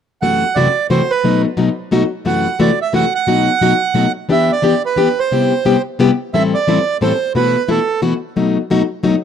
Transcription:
0.22 steel-string acoustic guitar F#2 C3 E3 A3 E4 F#4, accordion F#5
0.55 steel-string acoustic guitar F#2 C3 E3 A3 E4 F#4, accordion D5
0.90 steel-string acoustic guitar F#2 C3 E3 A3 E4 F#4, accordion C5
1.10 accordion B4
1.24 steel-string acoustic guitar B2 F#3 A3 D#4 F#4
1.57 steel-string acoustic guitar B2 F#3 A3 D#4 F#4
1.91 steel-string acoustic guitar B2 F#3 A3 D#4 F#4
2.25 steel-string acoustic guitar F#2 C3 E3 A3 E4 F#4, accordion F#5
2.59 steel-string acoustic guitar F#2 C3 E3 A3 E4 F#4, accordion D5
2.82 accordion E5
2.93 steel-string acoustic guitar F#2 C3 E3 A3 E4 F#4, accordion F#5
3.15 accordion F#5
3.27 steel-string acoustic guitar B2 F#3 A3 D#4 F#4
3.61 steel-string acoustic guitar B2 F#3 A3 D#4 F#4
3.94 steel-string acoustic guitar B2 F#3 A3 D#4 F#4
4.29 steel-string acoustic guitar E3 B3 D4 G4, accordion E5
4.52 accordion D5
4.62 steel-string acoustic guitar E3 B3 D4 G4
4.86 accordion B4
4.96 steel-string acoustic guitar E3 B3 D4 G4
5.19 accordion C5
5.32 steel-string acoustic guitar C3 G3 B3 E4 G4
5.65 steel-string acoustic guitar C3 G3 B3 E4 G4
5.99 steel-string acoustic guitar C3 G3 B3 E4 G4
6.34 steel-string acoustic guitar A2 E3 G3 C4 E4 A4, accordion E5
6.54 accordion D5
6.67 steel-string acoustic guitar A2 E3 G3 C4 E4 A4
7.01 steel-string acoustic guitar A2 E3 G3 C4 E4 A4, accordion C5
7.35 steel-string acoustic guitar B2 E3 A3 E4 F#4, accordion B4
7.68 steel-string acoustic guitar B2 E3 A3 E4 F#4, accordion A4
8.02 steel-string acoustic guitar B2 E3 A3 E4 F#4
8.36 steel-string acoustic guitar B2 F#3 A3 D#4 F#4
8.70 steel-string acoustic guitar B2 F#3 A3 D#4 F#4
9.03 steel-string acoustic guitar B2 F#3 A3 D#4 F#4

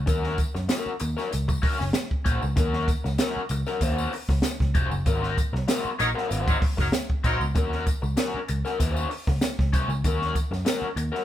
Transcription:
0.06 picked electric bass D#2, overdriven electric guitar C#4 F#4 A#4, kick, closed hi-hat, tambourine
0.23 snare
0.38 kick, closed hi-hat, tambourine
0.55 picked electric bass F#2, muted overdriven electric guitar stroke, snare, tambourine
0.69 overdriven electric guitar C#4 F#4 A#4, snare, closed hi-hat, tambourine
0.86 muted picked electric bass stroke
1.00 picked electric bass D#2, muted overdriven electric guitar stroke, closed hi-hat, tambourine
1.17 overdriven electric guitar C#4 F#4 A#4, snare, tambourine
1.31 picked electric bass C#2, muted overdriven electric guitar stroke, closed hi-hat, tambourine
1.48 muted overdriven electric guitar stroke, kick, tambourine
1.62 overdriven electric guitar C#4 F#4 A#4, kick, open hi-hat
1.79 picked electric bass F#1, muted overdriven electric guitar stroke, snare, tambourine
1.93 muted overdriven electric guitar stroke, snare, closed hi-hat, tambourine
2.11 kick
2.25 picked electric bass A#1, overdriven electric guitar C#4 F#4 C5, kick, closed hi-hat, tambourine
2.42 picked electric bass C#2, muted overdriven electric guitar stroke, tambourine
2.56 picked electric bass D#2, overdriven electric guitar C#4 F#4 A#4, kick, closed hi-hat, tambourine
2.73 snare
2.88 kick, closed hi-hat, tambourine
3.04 picked electric bass C#2, muted overdriven electric guitar stroke, snare, tambourine
3.18 overdriven electric guitar C#4 F#4 A#4, snare, closed hi-hat, tambourine
3.36 muted picked electric bass stroke
3.49 picked electric bass C#2, muted overdriven electric guitar stroke, closed hi-hat, tambourine
3.66 overdriven electric guitar C#4 F#4 A#4, snare, tambourine
3.81 picked electric bass D#2, overdriven electric guitar C#4 F#4 C5, kick, closed hi-hat, tambourine
3.98 tambourine
4.13 muted overdriven electric guitar stroke, open hi-hat
4.29 picked electric bass C#2, muted overdriven electric guitar stroke, kick, snare, tambourine
4.42 muted overdriven electric guitar stroke, snare, closed hi-hat, tambourine
4.60 picked electric bass C#2, kick, snare
4.75 picked electric bass F1, overdriven electric guitar C#4 F#4 C5, kick, closed hi-hat, tambourine
4.91 picked electric bass F#1, muted overdriven electric guitar stroke, tambourine
5.06 picked electric bass G#1, overdriven electric guitar C4 F#4 A#4, kick, closed hi-hat, tambourine
5.23 snare
5.38 kick, closed hi-hat, tambourine
5.53 picked electric bass C2, muted overdriven electric guitar stroke, snare
5.68 overdriven electric guitar C4 F#4 A#4, snare, closed hi-hat, tambourine
5.85 muted picked electric bass stroke
5.99 picked electric bass A#1, horn section F#3 D#4 A#4, muted overdriven electric guitar stroke, closed hi-hat, tambourine
6.15 overdriven electric guitar C4 F#4 A#4, snare
6.28 picked electric bass G#1, overdriven electric guitar B3 F4 B4, closed hi-hat, tambourine
6.40 overdriven electric guitar C4 F#4 C5
6.47 horn section F#3 D#4 A#4, kick, tambourine
6.60 muted overdriven electric guitar stroke, kick, open hi-hat
6.77 picked electric bass F#1, horn section F#3 D#4 A#4, muted overdriven electric guitar stroke, kick, snare, tambourine
6.92 muted overdriven electric guitar stroke, snare, closed hi-hat, tambourine
7.10 kick
7.24 picked electric bass A#1, horn section F#3 D#4 A#4, overdriven electric guitar C4 F#4 C5, kick, closed hi-hat, tambourine
7.40 picked electric bass C#2, muted overdriven electric guitar stroke, tambourine
7.55 picked electric bass D#2, overdriven electric guitar C#4 F#4 A#4, kick, closed hi-hat, tambourine
7.72 snare
7.87 kick, closed hi-hat, tambourine
8.02 picked electric bass C#2, muted overdriven electric guitar stroke, tambourine
8.17 overdriven electric guitar C#4 F#4 A#4, snare, closed hi-hat, tambourine
8.34 muted picked electric bass stroke
8.48 picked electric bass C#2, muted overdriven electric guitar stroke, closed hi-hat, tambourine
8.65 overdriven electric guitar C#4 F#4 A#4, snare, tambourine
8.79 picked electric bass D#2, overdriven electric guitar C4 F4 B4, kick, closed hi-hat, tambourine
8.91 overdriven electric guitar C#4 F#4 C5
8.97 tambourine
9.10 muted overdriven electric guitar stroke, open hi-hat
9.27 picked electric bass C#2, muted overdriven electric guitar stroke, kick, snare
9.41 muted overdriven electric guitar stroke, snare, closed hi-hat, tambourine
9.59 picked electric bass C#2, kick, snare
9.73 picked electric bass C2, overdriven electric guitar C#4 F#4 C5, kick, closed hi-hat, tambourine
9.88 picked electric bass C#2, muted overdriven electric guitar stroke, tambourine
10.04 picked electric bass D#2, overdriven electric guitar C#4 F#4 A#4, kick, closed hi-hat, tambourine
10.22 snare
10.35 kick, closed hi-hat, tambourine
10.51 picked electric bass F#2, muted overdriven electric guitar stroke, snare, tambourine
10.65 overdriven electric guitar C#4 F#4 A#4, snare, closed hi-hat, tambourine
10.82 muted picked electric bass stroke
10.96 picked electric bass D#2, muted overdriven electric guitar stroke, closed hi-hat, tambourine
11.12 overdriven electric guitar C#4 F#4 A#4, snare

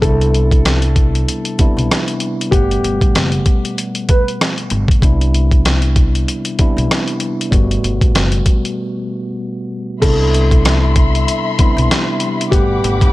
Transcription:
0.00 upright bass C2, tine electric piano C3 G3 B3 D4, upright piano A4, kick, closed hi-hat
0.04 tine electric piano E4
0.21 closed hi-hat
0.34 closed hi-hat
0.51 kick, closed hi-hat
0.65 cross-stick, snare, closed hi-hat
0.82 closed hi-hat
0.96 kick, closed hi-hat
1.15 closed hi-hat
1.28 closed hi-hat
1.45 closed hi-hat
1.59 tine electric piano C3 G3 B3 D4 E4, kick, closed hi-hat
1.77 upright bass B1, closed hi-hat
1.91 cross-stick, snare, closed hi-hat
2.08 closed hi-hat
2.20 closed hi-hat
2.41 closed hi-hat
2.50 upright bass G1, tine electric piano B2 G3 A3 B3, upright piano G4, kick, closed hi-hat
2.54 tine electric piano F#5
2.71 closed hi-hat
2.84 upright bass G1, closed hi-hat
3.01 kick, closed hi-hat
3.15 upright bass F#1, cross-stick, snare, closed hi-hat
3.32 closed hi-hat
3.46 kick, closed hi-hat
3.65 closed hi-hat
3.78 closed hi-hat
3.95 closed hi-hat
4.09 upright piano B4, kick, closed hi-hat
4.28 closed hi-hat
4.41 cross-stick, snare, closed hi-hat
4.58 closed hi-hat
4.70 upright bass G1, closed hi-hat
4.88 kick, closed hi-hat
5.00 upright bass C2, tine electric piano C3 G3 B3 D4, kick, closed hi-hat
5.05 tine electric piano E4
5.21 closed hi-hat
5.34 closed hi-hat
5.51 kick, closed hi-hat
5.65 cross-stick, snare, closed hi-hat
5.82 closed hi-hat
5.96 kick, closed hi-hat
6.15 closed hi-hat
6.28 closed hi-hat
6.45 closed hi-hat
6.59 tine electric piano C3 G3 B3 D4 E4, kick, closed hi-hat
6.77 upright bass B1, closed hi-hat
6.91 cross-stick, snare, closed hi-hat
7.08 closed hi-hat
7.20 closed hi-hat
7.41 closed hi-hat
7.50 upright bass G1, tine electric piano B2 G3 A3 B3, kick, closed hi-hat
7.54 tine electric piano F#4
7.71 closed hi-hat
7.84 upright bass G1, closed hi-hat
8.01 kick, closed hi-hat
8.15 upright bass F#1, cross-stick, snare, closed hi-hat
8.32 closed hi-hat
8.46 kick, closed hi-hat
8.65 closed hi-hat
10.00 upright bass C2, tine electric piano C3 G3 B3 D4, string section G3 E5 B5 C6, upright piano A4, kick, closed hi-hat, crash
10.05 tine electric piano E4
10.34 closed hi-hat
10.51 kick, closed hi-hat
10.65 cross-stick, snare, closed hi-hat
10.96 kick, closed hi-hat
11.15 closed hi-hat
11.28 closed hi-hat
11.59 tine electric piano C3 G3 B3 D4 E4, kick, closed hi-hat
11.77 upright bass B1, closed hi-hat
11.91 cross-stick, snare, closed hi-hat
12.20 closed hi-hat
12.41 closed hi-hat
12.50 upright bass G1, tine electric piano B2 G3 A3 B3, upright piano G4, string section F#5 B5 D6, kick, closed hi-hat
12.54 tine electric piano F#5
12.84 upright bass G1, closed hi-hat
13.01 kick, closed hi-hat

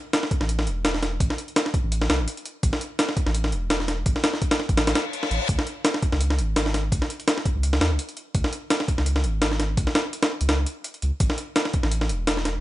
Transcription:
0.13 snare, closed hi-hat
0.23 snare
0.31 kick, closed hi-hat
0.41 sub bass A1, snare
0.49 closed hi-hat
0.59 snare
0.67 sub bass E1, closed hi-hat
0.85 snare, closed hi-hat
0.94 snare
1.03 snare, closed hi-hat
1.20 sub bass A1, kick, closed hi-hat
1.30 snare
1.38 closed hi-hat
1.48 closed hi-hat
1.56 snare, closed hi-hat
1.66 snare
1.74 kick, closed hi-hat
1.83 sub bass A1
1.92 closed hi-hat
2.02 snare
2.10 sub bass C2, snare, closed hi-hat
2.19 sub bass A1
2.28 closed hi-hat
2.37 closed hi-hat
2.46 closed hi-hat
2.63 sub bass A1, kick, closed hi-hat
2.73 snare
2.81 closed hi-hat
2.99 snare, closed hi-hat
3.09 snare
3.17 kick, closed hi-hat
3.26 sub bass A1, snare
3.35 closed hi-hat
3.44 snare
3.52 sub bass E1, closed hi-hat
3.70 snare, closed hi-hat
3.80 snare
3.88 snare, closed hi-hat
4.06 sub bass A1, kick, closed hi-hat
4.16 snare
4.24 snare, closed hi-hat
4.34 snare
4.42 kick, closed hi-hat
4.51 snare, closed hi-hat
4.60 snare
4.69 sub bass A1, kick, closed hi-hat
4.77 snare, closed hi-hat, reverse cymbal
4.87 snare, closed hi-hat
4.95 snare, closed hi-hat
5.13 closed hi-hat
5.23 snare
5.31 sub bass A1, closed hi-hat
5.49 sub bass C#2, kick, closed hi-hat
5.59 snare
5.67 closed hi-hat
5.85 snare, closed hi-hat
5.94 snare
6.03 kick, closed hi-hat
6.12 sub bass C#2, snare
6.21 closed hi-hat
6.30 snare
6.39 sub bass G#1, closed hi-hat
6.56 snare, closed hi-hat
6.66 snare
6.74 snare, closed hi-hat
6.92 sub bass C#2, kick, closed hi-hat
7.02 snare
7.10 closed hi-hat
7.20 closed hi-hat
7.28 snare, closed hi-hat
7.38 snare
7.45 kick, closed hi-hat
7.55 sub bass C#2
7.63 closed hi-hat
7.73 snare
7.81 sub bass E2, snare, closed hi-hat
7.91 sub bass C#2
7.99 closed hi-hat
8.09 closed hi-hat
8.17 closed hi-hat
8.35 sub bass C#2, kick, closed hi-hat
8.44 snare
8.53 closed hi-hat
8.70 snare, closed hi-hat
8.80 snare
8.88 kick, closed hi-hat
8.98 sub bass C#2, snare
9.06 closed hi-hat
9.16 snare
9.24 sub bass G#1, closed hi-hat
9.42 snare, closed hi-hat
9.51 snare
9.60 snare, closed hi-hat
9.77 sub bass C#2, kick, closed hi-hat
9.87 snare
9.95 snare, closed hi-hat
10.13 closed hi-hat
10.23 snare, closed hi-hat
10.41 sub bass C#2, closed hi-hat
10.49 snare, closed hi-hat
10.66 closed hi-hat
10.84 closed hi-hat
10.94 closed hi-hat
11.02 sub bass C#2, closed hi-hat
11.20 sub bass A1, kick, closed hi-hat
11.30 snare
11.38 closed hi-hat
11.56 snare, closed hi-hat
11.65 snare
11.73 kick, closed hi-hat
11.83 sub bass A1, snare
11.91 closed hi-hat
12.01 snare
12.09 sub bass E1, closed hi-hat
12.27 snare, closed hi-hat
12.37 snare
12.45 snare, closed hi-hat

